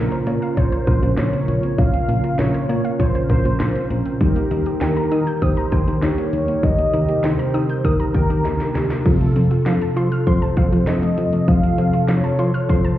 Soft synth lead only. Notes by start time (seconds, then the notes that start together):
Already playing: A#4
0.57 C5
1.18 C#5
1.78 F5
2.39 C#5
3.00 C5
3.30 C5
4.82 A#4
5.42 C5
6.03 C#5
6.63 D#5
7.24 C5
7.84 A#4
8.15 A#4
9.66 A4
10.27 C5
10.87 D#5
11.48 F5
12.09 C#5
12.70 C5